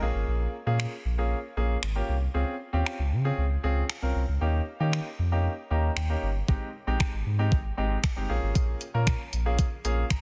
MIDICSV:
0, 0, Header, 1, 4, 480
1, 0, Start_track
1, 0, Tempo, 517241
1, 257, Time_signature, 4, 2, 24, 8
1, 9475, End_track
2, 0, Start_track
2, 0, Title_t, "Grand piano"
2, 0, Program_c, 0, 0
2, 19, Note_on_c, 0, 58, 84
2, 21, Note_on_c, 0, 61, 76
2, 22, Note_on_c, 0, 65, 80
2, 23, Note_on_c, 0, 68, 93
2, 498, Note_off_c, 0, 58, 0
2, 499, Note_off_c, 0, 61, 0
2, 499, Note_off_c, 0, 65, 0
2, 500, Note_off_c, 0, 68, 0
2, 616, Note_on_c, 0, 58, 83
2, 618, Note_on_c, 0, 61, 73
2, 619, Note_on_c, 0, 65, 77
2, 620, Note_on_c, 0, 68, 92
2, 848, Note_off_c, 0, 58, 0
2, 849, Note_off_c, 0, 61, 0
2, 850, Note_off_c, 0, 65, 0
2, 850, Note_off_c, 0, 68, 0
2, 1096, Note_on_c, 0, 58, 81
2, 1097, Note_on_c, 0, 61, 75
2, 1099, Note_on_c, 0, 65, 78
2, 1101, Note_on_c, 0, 68, 88
2, 1270, Note_off_c, 0, 58, 0
2, 1271, Note_off_c, 0, 61, 0
2, 1272, Note_off_c, 0, 65, 0
2, 1273, Note_off_c, 0, 68, 0
2, 1455, Note_on_c, 0, 58, 81
2, 1457, Note_on_c, 0, 61, 72
2, 1458, Note_on_c, 0, 65, 71
2, 1459, Note_on_c, 0, 68, 89
2, 1630, Note_off_c, 0, 58, 0
2, 1631, Note_off_c, 0, 61, 0
2, 1631, Note_off_c, 0, 65, 0
2, 1632, Note_off_c, 0, 68, 0
2, 1814, Note_on_c, 0, 58, 83
2, 1815, Note_on_c, 0, 61, 72
2, 1816, Note_on_c, 0, 65, 76
2, 1818, Note_on_c, 0, 67, 89
2, 1989, Note_off_c, 0, 58, 0
2, 1990, Note_off_c, 0, 61, 0
2, 1990, Note_off_c, 0, 65, 0
2, 1991, Note_off_c, 0, 67, 0
2, 2173, Note_on_c, 0, 60, 80
2, 2174, Note_on_c, 0, 61, 76
2, 2176, Note_on_c, 0, 65, 76
2, 2177, Note_on_c, 0, 68, 88
2, 2349, Note_off_c, 0, 60, 0
2, 2349, Note_off_c, 0, 61, 0
2, 2350, Note_off_c, 0, 65, 0
2, 2351, Note_off_c, 0, 68, 0
2, 2533, Note_on_c, 0, 60, 87
2, 2534, Note_on_c, 0, 61, 75
2, 2535, Note_on_c, 0, 65, 78
2, 2538, Note_on_c, 0, 67, 89
2, 2767, Note_off_c, 0, 60, 0
2, 2767, Note_off_c, 0, 61, 0
2, 2768, Note_off_c, 0, 65, 0
2, 2769, Note_off_c, 0, 67, 0
2, 3011, Note_on_c, 0, 60, 80
2, 3012, Note_on_c, 0, 61, 78
2, 3014, Note_on_c, 0, 65, 74
2, 3016, Note_on_c, 0, 68, 90
2, 3188, Note_off_c, 0, 60, 0
2, 3188, Note_off_c, 0, 61, 0
2, 3189, Note_off_c, 0, 65, 0
2, 3190, Note_off_c, 0, 68, 0
2, 3373, Note_on_c, 0, 60, 82
2, 3374, Note_on_c, 0, 61, 76
2, 3375, Note_on_c, 0, 65, 76
2, 3376, Note_on_c, 0, 68, 92
2, 3549, Note_off_c, 0, 60, 0
2, 3550, Note_off_c, 0, 61, 0
2, 3550, Note_off_c, 0, 65, 0
2, 3550, Note_off_c, 0, 68, 0
2, 3732, Note_on_c, 0, 60, 79
2, 3733, Note_on_c, 0, 61, 71
2, 3735, Note_on_c, 0, 65, 73
2, 3738, Note_on_c, 0, 70, 89
2, 3908, Note_off_c, 0, 60, 0
2, 3909, Note_off_c, 0, 61, 0
2, 3910, Note_off_c, 0, 65, 0
2, 3911, Note_off_c, 0, 70, 0
2, 4091, Note_on_c, 0, 58, 83
2, 4093, Note_on_c, 0, 61, 74
2, 4094, Note_on_c, 0, 63, 76
2, 4097, Note_on_c, 0, 67, 89
2, 4268, Note_off_c, 0, 58, 0
2, 4269, Note_off_c, 0, 61, 0
2, 4270, Note_off_c, 0, 63, 0
2, 4271, Note_off_c, 0, 67, 0
2, 4454, Note_on_c, 0, 58, 80
2, 4455, Note_on_c, 0, 61, 76
2, 4458, Note_on_c, 0, 63, 78
2, 4458, Note_on_c, 0, 67, 91
2, 4687, Note_off_c, 0, 58, 0
2, 4688, Note_off_c, 0, 61, 0
2, 4689, Note_off_c, 0, 63, 0
2, 4689, Note_off_c, 0, 67, 0
2, 4934, Note_on_c, 0, 58, 78
2, 4936, Note_on_c, 0, 61, 79
2, 4936, Note_on_c, 0, 63, 75
2, 4939, Note_on_c, 0, 67, 92
2, 5109, Note_off_c, 0, 58, 0
2, 5110, Note_off_c, 0, 61, 0
2, 5111, Note_off_c, 0, 63, 0
2, 5112, Note_off_c, 0, 67, 0
2, 5293, Note_on_c, 0, 58, 78
2, 5295, Note_on_c, 0, 61, 71
2, 5297, Note_on_c, 0, 82, 67
2, 5298, Note_on_c, 0, 63, 74
2, 5299, Note_on_c, 0, 67, 87
2, 5469, Note_off_c, 0, 58, 0
2, 5470, Note_off_c, 0, 61, 0
2, 5471, Note_off_c, 0, 63, 0
2, 5472, Note_off_c, 0, 67, 0
2, 5520, Note_off_c, 0, 82, 0
2, 5655, Note_on_c, 0, 58, 77
2, 5657, Note_on_c, 0, 61, 73
2, 5658, Note_on_c, 0, 63, 72
2, 5661, Note_on_c, 0, 67, 91
2, 5830, Note_off_c, 0, 58, 0
2, 5831, Note_off_c, 0, 61, 0
2, 5831, Note_off_c, 0, 63, 0
2, 5833, Note_off_c, 0, 67, 0
2, 6015, Note_on_c, 0, 56, 77
2, 6017, Note_on_c, 0, 60, 72
2, 6018, Note_on_c, 0, 63, 74
2, 6020, Note_on_c, 0, 67, 89
2, 6190, Note_off_c, 0, 56, 0
2, 6191, Note_off_c, 0, 60, 0
2, 6191, Note_off_c, 0, 63, 0
2, 6193, Note_off_c, 0, 67, 0
2, 6376, Note_on_c, 0, 56, 79
2, 6377, Note_on_c, 0, 60, 73
2, 6378, Note_on_c, 0, 63, 74
2, 6381, Note_on_c, 0, 67, 92
2, 6608, Note_off_c, 0, 56, 0
2, 6609, Note_off_c, 0, 60, 0
2, 6609, Note_off_c, 0, 63, 0
2, 6611, Note_off_c, 0, 67, 0
2, 6855, Note_on_c, 0, 56, 79
2, 6857, Note_on_c, 0, 60, 75
2, 6857, Note_on_c, 0, 63, 75
2, 6860, Note_on_c, 0, 67, 92
2, 7030, Note_off_c, 0, 56, 0
2, 7031, Note_off_c, 0, 60, 0
2, 7031, Note_off_c, 0, 63, 0
2, 7032, Note_off_c, 0, 67, 0
2, 7214, Note_on_c, 0, 56, 83
2, 7215, Note_on_c, 0, 60, 75
2, 7216, Note_on_c, 0, 63, 76
2, 7218, Note_on_c, 0, 67, 91
2, 7389, Note_off_c, 0, 56, 0
2, 7390, Note_off_c, 0, 60, 0
2, 7390, Note_off_c, 0, 63, 0
2, 7391, Note_off_c, 0, 67, 0
2, 7575, Note_on_c, 0, 56, 81
2, 7575, Note_on_c, 0, 60, 73
2, 7578, Note_on_c, 0, 63, 74
2, 7578, Note_on_c, 0, 67, 89
2, 7693, Note_on_c, 0, 58, 80
2, 7696, Note_off_c, 0, 56, 0
2, 7696, Note_off_c, 0, 60, 0
2, 7696, Note_on_c, 0, 61, 81
2, 7697, Note_off_c, 0, 63, 0
2, 7697, Note_off_c, 0, 67, 0
2, 7697, Note_on_c, 0, 65, 75
2, 7698, Note_on_c, 0, 68, 93
2, 8175, Note_off_c, 0, 58, 0
2, 8176, Note_off_c, 0, 61, 0
2, 8177, Note_off_c, 0, 65, 0
2, 8177, Note_off_c, 0, 68, 0
2, 8297, Note_on_c, 0, 58, 85
2, 8299, Note_on_c, 0, 61, 76
2, 8300, Note_on_c, 0, 65, 78
2, 8302, Note_on_c, 0, 70, 93
2, 8529, Note_off_c, 0, 58, 0
2, 8530, Note_off_c, 0, 61, 0
2, 8530, Note_off_c, 0, 65, 0
2, 8531, Note_off_c, 0, 70, 0
2, 8776, Note_on_c, 0, 58, 86
2, 8777, Note_on_c, 0, 61, 76
2, 8778, Note_on_c, 0, 65, 74
2, 8780, Note_on_c, 0, 68, 91
2, 8950, Note_off_c, 0, 58, 0
2, 8951, Note_off_c, 0, 61, 0
2, 8951, Note_off_c, 0, 65, 0
2, 8952, Note_off_c, 0, 68, 0
2, 9136, Note_on_c, 0, 58, 81
2, 9137, Note_on_c, 0, 61, 73
2, 9139, Note_on_c, 0, 65, 77
2, 9139, Note_on_c, 0, 77, 68
2, 9141, Note_on_c, 0, 68, 91
2, 9310, Note_off_c, 0, 58, 0
2, 9311, Note_off_c, 0, 61, 0
2, 9312, Note_off_c, 0, 65, 0
2, 9313, Note_off_c, 0, 68, 0
2, 9361, Note_off_c, 0, 77, 0
2, 9377, Note_on_c, 0, 82, 71
2, 9475, Note_off_c, 0, 82, 0
2, 9475, End_track
3, 0, Start_track
3, 0, Title_t, "Sub bass"
3, 0, Program_c, 1, 38
3, 15, Note_on_c, 1, 34, 98
3, 107, Note_off_c, 1, 34, 0
3, 136, Note_on_c, 1, 32, 87
3, 227, Note_off_c, 1, 32, 0
3, 256, Note_on_c, 1, 34, 98
3, 437, Note_off_c, 1, 34, 0
3, 616, Note_on_c, 1, 46, 92
3, 798, Note_off_c, 1, 46, 0
3, 976, Note_on_c, 1, 34, 101
3, 1248, Note_off_c, 1, 34, 0
3, 1455, Note_on_c, 1, 34, 102
3, 1637, Note_off_c, 1, 34, 0
3, 1696, Note_on_c, 1, 32, 97
3, 1878, Note_off_c, 1, 32, 0
3, 1936, Note_on_c, 1, 36, 99
3, 2117, Note_off_c, 1, 36, 0
3, 2176, Note_on_c, 1, 37, 102
3, 2267, Note_off_c, 1, 37, 0
3, 2536, Note_on_c, 1, 39, 91
3, 2627, Note_off_c, 1, 39, 0
3, 2775, Note_on_c, 1, 37, 93
3, 2896, Note_on_c, 1, 49, 100
3, 2910, Note_off_c, 1, 37, 0
3, 3077, Note_off_c, 1, 49, 0
3, 3135, Note_on_c, 1, 37, 107
3, 3317, Note_off_c, 1, 37, 0
3, 3374, Note_on_c, 1, 37, 92
3, 3556, Note_off_c, 1, 37, 0
3, 3735, Note_on_c, 1, 36, 89
3, 3827, Note_off_c, 1, 36, 0
3, 3854, Note_on_c, 1, 36, 92
3, 3946, Note_off_c, 1, 36, 0
3, 3975, Note_on_c, 1, 37, 88
3, 4066, Note_off_c, 1, 37, 0
3, 4094, Note_on_c, 1, 39, 107
3, 4277, Note_off_c, 1, 39, 0
3, 4455, Note_on_c, 1, 51, 103
3, 4637, Note_off_c, 1, 51, 0
3, 4815, Note_on_c, 1, 41, 101
3, 5088, Note_off_c, 1, 41, 0
3, 5296, Note_on_c, 1, 39, 99
3, 5478, Note_off_c, 1, 39, 0
3, 5536, Note_on_c, 1, 39, 91
3, 5718, Note_off_c, 1, 39, 0
3, 5777, Note_on_c, 1, 31, 84
3, 5958, Note_off_c, 1, 31, 0
3, 6019, Note_on_c, 1, 32, 99
3, 6108, Note_off_c, 1, 32, 0
3, 6376, Note_on_c, 1, 34, 92
3, 6467, Note_off_c, 1, 34, 0
3, 6617, Note_on_c, 1, 32, 96
3, 6707, Note_off_c, 1, 32, 0
3, 6738, Note_on_c, 1, 44, 106
3, 6977, Note_on_c, 1, 32, 99
3, 6991, Note_off_c, 1, 44, 0
3, 7158, Note_off_c, 1, 32, 0
3, 7218, Note_on_c, 1, 32, 91
3, 7398, Note_off_c, 1, 32, 0
3, 7579, Note_on_c, 1, 31, 91
3, 7669, Note_off_c, 1, 31, 0
3, 7699, Note_on_c, 1, 34, 100
3, 7788, Note_off_c, 1, 34, 0
3, 7820, Note_on_c, 1, 32, 85
3, 7910, Note_off_c, 1, 32, 0
3, 7938, Note_on_c, 1, 34, 104
3, 8119, Note_off_c, 1, 34, 0
3, 8299, Note_on_c, 1, 46, 93
3, 8479, Note_off_c, 1, 46, 0
3, 8658, Note_on_c, 1, 34, 106
3, 8930, Note_off_c, 1, 34, 0
3, 9136, Note_on_c, 1, 34, 103
3, 9317, Note_off_c, 1, 34, 0
3, 9377, Note_on_c, 1, 32, 97
3, 9475, Note_off_c, 1, 32, 0
3, 9475, End_track
4, 0, Start_track
4, 0, Title_t, "Drums"
4, 739, Note_on_c, 9, 26, 110
4, 832, Note_off_c, 9, 26, 0
4, 1696, Note_on_c, 9, 26, 125
4, 1789, Note_off_c, 9, 26, 0
4, 2658, Note_on_c, 9, 26, 109
4, 2751, Note_off_c, 9, 26, 0
4, 3615, Note_on_c, 9, 26, 117
4, 3708, Note_off_c, 9, 26, 0
4, 4578, Note_on_c, 9, 26, 108
4, 4671, Note_off_c, 9, 26, 0
4, 5536, Note_on_c, 9, 26, 121
4, 5629, Note_off_c, 9, 26, 0
4, 6018, Note_on_c, 9, 36, 105
4, 6111, Note_off_c, 9, 36, 0
4, 6497, Note_on_c, 9, 36, 109
4, 6500, Note_on_c, 9, 26, 108
4, 6590, Note_off_c, 9, 36, 0
4, 6593, Note_off_c, 9, 26, 0
4, 6977, Note_on_c, 9, 36, 105
4, 7070, Note_off_c, 9, 36, 0
4, 7457, Note_on_c, 9, 36, 116
4, 7458, Note_on_c, 9, 26, 123
4, 7550, Note_off_c, 9, 36, 0
4, 7551, Note_off_c, 9, 26, 0
4, 7938, Note_on_c, 9, 36, 109
4, 7938, Note_on_c, 9, 42, 61
4, 8031, Note_off_c, 9, 36, 0
4, 8031, Note_off_c, 9, 42, 0
4, 8174, Note_on_c, 9, 42, 48
4, 8267, Note_off_c, 9, 42, 0
4, 8416, Note_on_c, 9, 42, 77
4, 8417, Note_on_c, 9, 36, 108
4, 8420, Note_on_c, 9, 26, 109
4, 8509, Note_off_c, 9, 36, 0
4, 8509, Note_off_c, 9, 42, 0
4, 8512, Note_off_c, 9, 26, 0
4, 8657, Note_on_c, 9, 42, 56
4, 8750, Note_off_c, 9, 42, 0
4, 8895, Note_on_c, 9, 42, 74
4, 8897, Note_on_c, 9, 36, 110
4, 8988, Note_off_c, 9, 42, 0
4, 8990, Note_off_c, 9, 36, 0
4, 9139, Note_on_c, 9, 42, 53
4, 9232, Note_off_c, 9, 42, 0
4, 9377, Note_on_c, 9, 26, 116
4, 9377, Note_on_c, 9, 36, 116
4, 9378, Note_on_c, 9, 42, 81
4, 9470, Note_off_c, 9, 26, 0
4, 9470, Note_off_c, 9, 36, 0
4, 9471, Note_off_c, 9, 42, 0
4, 9475, End_track
0, 0, End_of_file